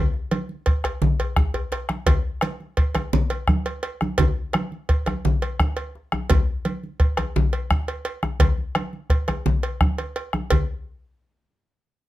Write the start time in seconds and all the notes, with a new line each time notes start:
0.14 djembe slap
0.31 cowbell, djembe slap, high conga
0.49 high conga
0.66 bombo rim, bombo low, cowbell, high conga
0.84 bombo rim, cowbell, djembe tone
1.02 djembe slap, high conga, low conga, djembe bass
1.20 cowbell, djembe bass
1.36 bombo rim, bombo low, high conga, djembe bass
1.54 bombo rim, cowbell, djembe bass
1.72 cowbell, djembe slap
1.89 bombo rim, djembe slap, high conga
2.06 bombo low, cowbell, djembe slap, djembe bass, low conga
2.41 bombo rim, cowbell, high conga
2.60 high conga
2.77 bombo low, cowbell
2.95 bombo rim, cowbell, djembe tone, high conga
3.13 djembe slap, djembe bass, low conga
3.30 cowbell, high conga
3.48 bombo rim, bombo low, high conga
3.66 cowbell
3.83 cowbell, djembe slap
4.01 bombo rim, djembe slap, djembe tone, high conga
4.18 bombo low, cowbell, djembe slap, djembe bass, low conga
4.53 bombo rim, cowbell, high conga
4.72 high conga
4.89 bombo low, cowbell
5.06 bombo rim, cowbell, djembe tone, high conga
5.25 djembe slap, low conga, djembe bass
5.42 cowbell, high conga
5.60 bombo rim, bombo low, high conga
5.77 cowbell
5.95 djembe slap
6.12 bombo rim, djembe slap, high conga, djembe tone
6.30 bombo low, cowbell, djembe slap, low conga, djembe bass
6.65 cowbell, high conga
6.83 high conga
7.00 bombo low, cowbell
7.17 bombo rim, cowbell, djembe tone, high conga
7.36 djembe slap, low conga, djembe bass
7.53 cowbell, high conga
7.70 bombo rim, bombo low, high conga
7.88 cowbell
8.05 cowbell, djembe slap
8.23 bombo rim, djembe slap, high conga, djembe tone
8.40 bombo low, cowbell, djembe slap, low conga, djembe bass
8.58 high conga
8.75 bombo rim, cowbell, djembe slap, high conga
8.93 high conga
9.10 bombo rim, bombo low, cowbell, djembe slap
9.28 bombo rim, cowbell, djembe tone, high conga
9.46 djembe slap, high conga, low conga, djembe bass
9.63 cowbell
9.81 bombo rim, bombo low, djembe slap, high conga
9.98 bombo rim, cowbell, high conga
10.16 cowbell, djembe slap
10.33 bombo rim, djembe slap, djembe tone, high conga
10.50 bombo low, cowbell, djembe bass, low conga